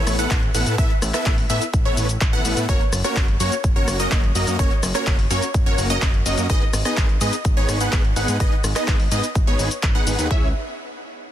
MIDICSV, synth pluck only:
0, 0, Header, 1, 2, 480
1, 0, Start_track
1, 0, Tempo, 476190
1, 789, Time_signature, 4, 2, 24, 8
1, 11410, End_track
2, 0, Start_track
2, 0, Title_t, "Synth pluck"
2, 0, Program_c, 0, 84
2, 0, Note_on_c, 0, 73, 95
2, 165, Note_off_c, 0, 73, 0
2, 189, Note_on_c, 0, 78, 106
2, 409, Note_off_c, 0, 78, 0
2, 550, Note_on_c, 0, 78, 87
2, 761, Note_off_c, 0, 78, 0
2, 789, Note_on_c, 0, 76, 110
2, 926, Note_off_c, 0, 76, 0
2, 1148, Note_on_c, 0, 76, 85
2, 1368, Note_off_c, 0, 76, 0
2, 1508, Note_on_c, 0, 76, 99
2, 1646, Note_off_c, 0, 76, 0
2, 1868, Note_on_c, 0, 73, 91
2, 2085, Note_off_c, 0, 73, 0
2, 2348, Note_on_c, 0, 78, 97
2, 2680, Note_off_c, 0, 78, 0
2, 2709, Note_on_c, 0, 73, 110
2, 2846, Note_off_c, 0, 73, 0
2, 3069, Note_on_c, 0, 73, 84
2, 3289, Note_off_c, 0, 73, 0
2, 3429, Note_on_c, 0, 73, 99
2, 3566, Note_off_c, 0, 73, 0
2, 3789, Note_on_c, 0, 73, 91
2, 4005, Note_off_c, 0, 73, 0
2, 4029, Note_on_c, 0, 75, 109
2, 4248, Note_off_c, 0, 75, 0
2, 4389, Note_on_c, 0, 75, 82
2, 4600, Note_off_c, 0, 75, 0
2, 4629, Note_on_c, 0, 73, 110
2, 4766, Note_off_c, 0, 73, 0
2, 4989, Note_on_c, 0, 73, 88
2, 5209, Note_off_c, 0, 73, 0
2, 5348, Note_on_c, 0, 73, 99
2, 5486, Note_off_c, 0, 73, 0
2, 5708, Note_on_c, 0, 73, 92
2, 5924, Note_off_c, 0, 73, 0
2, 5948, Note_on_c, 0, 75, 108
2, 6168, Note_off_c, 0, 75, 0
2, 6308, Note_on_c, 0, 75, 88
2, 6520, Note_off_c, 0, 75, 0
2, 6548, Note_on_c, 0, 75, 115
2, 6686, Note_off_c, 0, 75, 0
2, 6909, Note_on_c, 0, 75, 87
2, 7129, Note_off_c, 0, 75, 0
2, 7269, Note_on_c, 0, 75, 104
2, 7406, Note_off_c, 0, 75, 0
2, 7630, Note_on_c, 0, 73, 95
2, 7845, Note_off_c, 0, 73, 0
2, 7869, Note_on_c, 0, 78, 102
2, 8088, Note_off_c, 0, 78, 0
2, 8229, Note_on_c, 0, 78, 86
2, 8440, Note_off_c, 0, 78, 0
2, 8469, Note_on_c, 0, 75, 107
2, 8606, Note_off_c, 0, 75, 0
2, 8829, Note_on_c, 0, 75, 86
2, 9049, Note_off_c, 0, 75, 0
2, 9189, Note_on_c, 0, 75, 101
2, 9326, Note_off_c, 0, 75, 0
2, 9549, Note_on_c, 0, 73, 91
2, 9765, Note_off_c, 0, 73, 0
2, 10029, Note_on_c, 0, 78, 100
2, 10360, Note_off_c, 0, 78, 0
2, 10389, Note_on_c, 0, 76, 105
2, 10567, Note_off_c, 0, 76, 0
2, 11410, End_track
0, 0, End_of_file